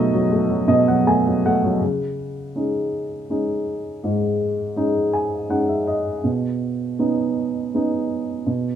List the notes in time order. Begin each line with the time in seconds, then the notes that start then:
Already playing: B2 F#3 A3 D#4 F#4 A4 D#5
0.13 F#3
0.32 A3
0.49 F#3
0.67 B2 D#5
0.88 F#3 F#5
1.07 A3 G#5
1.26 F#3
1.45 A3 F#5
1.64 F#3
1.81 C#3
2.56 G#3 C#4 D#4
3.30 G#3 C#4 D#4
4.04 G#2
4.76 G#3 C#4 D#4
5.13 G#5
5.49 G#3 C#4 D#4 F#5
5.68 E5
5.87 D#5
6.24 B2
6.99 B3 C#4 D#4
7.74 B3 C#4 D#4
8.46 B2